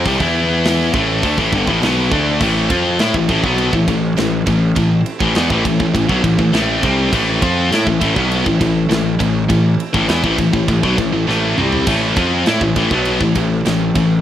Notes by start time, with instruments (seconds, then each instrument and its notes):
Already playing: pipe organ C4 A4 E5 G5
0.05 picked electric bass C2, distorted electric guitar C3 G3, kick, open hi-hat
0.20 picked electric bass E2, distorted electric guitar E3 B3 E4, pipe organ B3 E4 E5 B5, kick
0.64 snare, open hi-hat
0.93 picked electric bass A1, distorted electric guitar A2 E3 A3, pipe organ C4 A4 A5, kick
1.23 picked electric bass D2, distorted electric guitar D3 A3, kick, open hi-hat
1.38 picked electric bass A1, distorted electric guitar A2 E3, kick
1.52 picked electric bass G1, distorted electric guitar G2 D3, kick
1.67 picked electric bass A1, distorted electric guitar A2 E3, kick
1.82 picked electric bass B1, distorted electric guitar B2 F#3 B3, snare, open hi-hat
2.11 picked electric bass D2, distorted electric guitar D3 A3 D4, kick
2.40 picked electric bass A1, distorted electric guitar A2 E3 A3, pipe organ A3 C4 E4 C5 E5, kick, crash
2.70 picked electric bass F2, distorted electric guitar F3 C4 F4, kick, ride
2.99 picked electric bass A2, distorted electric guitar A3 E4, snare, ride
3.14 picked electric bass A1, distorted electric guitar A2 E3, kick
3.29 picked electric bass A1, distorted electric guitar A2 E3, kick, ride
3.43 picked electric bass B1, distorted electric guitar B2 F#3 B3, kick
3.58 ride
3.73 picked electric bass A1, distorted electric guitar A2 E3, kick
3.88 picked electric bass A1, distorted electric guitar A2 E3, kick, ride
4.17 picked electric bass A1, distorted electric guitar A2 E3, snare, ride
4.47 picked electric bass A1, distorted electric guitar A2 E3, kick, ride
4.76 picked electric bass A1, distorted electric guitar A2 E3, kick, ride
5.06 ride
5.20 picked electric bass A1, distorted electric guitar A2 E3, kick
5.35 picked electric bass E2, distorted electric guitar E3 B3, snare, ride
5.50 picked electric bass A1, distorted electric guitar A2 E3, kick
5.65 picked electric bass A1, distorted electric guitar A2 E3, kick, ride
5.80 picked electric bass A1, distorted electric guitar A2 E3, kick
5.94 picked electric bass A1, distorted electric guitar A2 E3, kick, ride
6.08 picked electric bass B1, distorted electric guitar B2 F#3, kick
6.24 picked electric bass A1, distorted electric guitar A2 E3, kick, ride
6.38 picked electric bass A1, distorted electric guitar A2 E3, kick
6.53 picked electric bass A1, distorted electric guitar A2 E3 A3, snare, ride
6.83 picked electric bass C2, distorted electric guitar C3 G3 C4, kick, ride
7.12 picked electric bass A1, distorted electric guitar A2 E3 A3, kick, crash
7.42 picked electric bass F2, distorted electric guitar F3 C4 F4, kick, ride
7.71 picked electric bass A2, distorted electric guitar A3 E4, snare, ride
7.86 picked electric bass A1, distorted electric guitar A2 E3, kick
8.01 picked electric bass A1, distorted electric guitar A2 E3, kick, ride
8.15 picked electric bass B1, distorted electric guitar B2 F#3 B3, kick
8.31 ride
8.46 picked electric bass A1, distorted electric guitar A2 E3, kick
8.60 picked electric bass A1, distorted electric guitar A2 E3, kick, ride
8.89 picked electric bass A1, distorted electric guitar A2 E3, snare, ride
9.19 picked electric bass A1, distorted electric guitar A2 E3, kick, ride
9.49 picked electric bass A1, distorted electric guitar A2 E3, kick, ride
9.80 ride
9.93 picked electric bass A1, distorted electric guitar A2 E3, kick
10.09 picked electric bass E2, distorted electric guitar E3 B3, snare, ride
10.23 picked electric bass A1, distorted electric guitar A2 E3, kick
10.38 picked electric bass A1, distorted electric guitar A2 E3, kick, ride
10.53 picked electric bass A1, distorted electric guitar A2 E3, kick
10.68 picked electric bass A1, distorted electric guitar A2 E3, pipe organ D5, kick, ride
10.83 picked electric bass B1, distorted electric guitar B2 F#3, kick
10.98 picked electric bass A1, distorted electric guitar A2 E3, kick, ride
11.13 picked electric bass A1, distorted electric guitar A2 E3
11.27 picked electric bass A1, distorted electric guitar A2 E3 A3, snare
11.57 picked electric bass C2, distorted electric guitar C3 G3 C4, mid tom
11.72 floor tom
11.87 picked electric bass A1, distorted electric guitar A2 E3 A3, kick, ride, crash
12.16 picked electric bass F2, distorted electric guitar F3 C4 F4, kick, ride
12.46 picked electric bass A2, distorted electric guitar A3 E4, snare, ride
12.61 picked electric bass A1, distorted electric guitar A2 E3, kick
12.76 picked electric bass A1, distorted electric guitar A2 E3, kick, ride
12.91 picked electric bass B1, distorted electric guitar B2 F#3 B3, kick
13.05 ride
13.21 picked electric bass A1, distorted electric guitar A2 E3, kick
13.35 picked electric bass A1, distorted electric guitar A2 E3, kick, ride
13.66 picked electric bass A1, distorted electric guitar A2 E3, snare, ride
13.95 picked electric bass A1, distorted electric guitar A2 E3, kick, ride